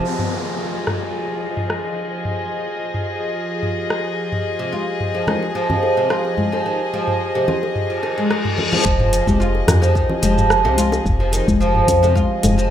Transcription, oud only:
4.59 C3
4.72 F4
5.15 F3
5.27 D#3
5.55 F3
5.97 C3
6.10 F4
6.52 F3
6.66 D#3
6.94 F3
7.35 C3
7.48 F4
7.90 F3
8.03 D#3
8.18 G#3
8.30 G#3
8.72 F3
8.85 F3
9.27 C3
9.40 F4
9.82 F3
9.95 D#3
10.22 F3
10.65 C3
10.78 F4
11.20 F3
11.32 D#3
11.60 F3
12.03 C3
12.15 F4
12.58 F3

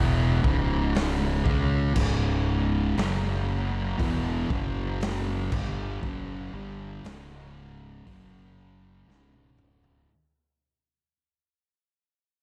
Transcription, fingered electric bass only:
Already playing: E1
0.44 C#1
1.46 C#2
1.96 C#1
2.98 F#1
3.99 E1
4.50 F#1
5.52 G1
6.03 F#1
6.53 G1
7.04 C#1
8.07 F#1
9.07 C#1

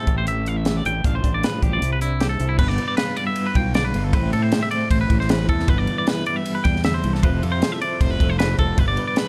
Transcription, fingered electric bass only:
0.07 A1
0.86 A1
1.05 A1
1.24 A1
1.63 A1
1.82 C2
2.40 C2
2.59 G1
3.55 B1
3.95 G1
4.13 A1
4.34 A2
4.91 A1
5.10 A1
5.49 E2
5.69 G1
6.65 E2
7.04 C2
7.24 F1
7.43 F2
8.01 F1
8.20 F1
8.59 F1
8.78 G1

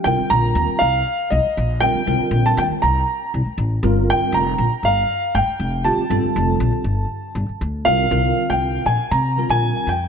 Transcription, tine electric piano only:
0.05 D3 G3 C4 F4 A#4
1.81 D3 G3 C4 F4 A#4
2.06 D3 G3 C4 F4 A#4
3.83 D3 G3 C4 F4 A#4
5.84 D3 G3 C4 F4 G4
6.10 D3 G3 C4 F4 A4
7.85 D3 G3 C4 F4 A#4
8.10 D3 G3 C4 F4 A#4
9.37 D3 G3 C4 F4 A#4

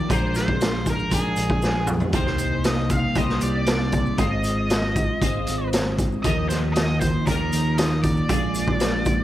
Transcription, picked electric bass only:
0.11 A#1
1.12 A#1
1.37 A#1
2.14 C2
3.16 C2
3.42 C2
4.19 G#1
5.22 G#1
5.48 G#1
6.25 D#2
7.28 D#2
7.53 D#2
8.30 A#1

